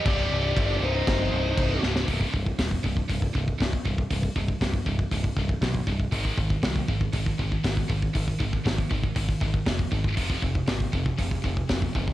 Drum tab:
CC |x---x---x---x---|----------------|----------------|----------------|
HH |----------------|o---o---o---o---|o---o---o---o---|o---o---o---o---|
SD |--------o-----oo|----o-------o---|----o-------o---|----o-------o---|
BD |o---o---o---o---|oooooooooooooooo|oooooooooooooooo|oooooooooooooooo|

CC |----------------|----------------|
HH |o---o---o---o---|o---o---o---o---|
SD |----o-------o---|----o-------o---|
BD |oooooooooooooooo|oooooooooooooooo|